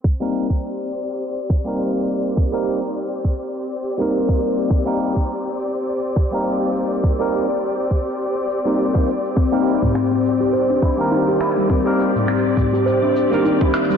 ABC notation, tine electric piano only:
X:1
M:4/4
L:1/16
Q:"Swing 16ths" 1/4=103
K:Cm
V:1 name="Tine electric piano"
z [G,B,CEB]2 z8 [G,B,CEB]4- [G,B,CEB]- | [G,B,CEB] [G,B,CEB]2 z8 [G,B,CEB]4- [G,B,CEB]- | [G,B,CEB] [G,B,CEB]2 z8 [G,B,CEB]4- [G,B,CEB]- | [G,B,CEB] [G,B,CEB]2 z8 [G,B,CEB]2 [G,B,CEc] z2 |
z [G,B,CEB]2 z8 [E,G,B,CB]4- [E,G,B,CB]- | [E,G,B,CB] [G,B,CEB]2 z8 [E,G,B,CB]4- [E,G,B,CB] |]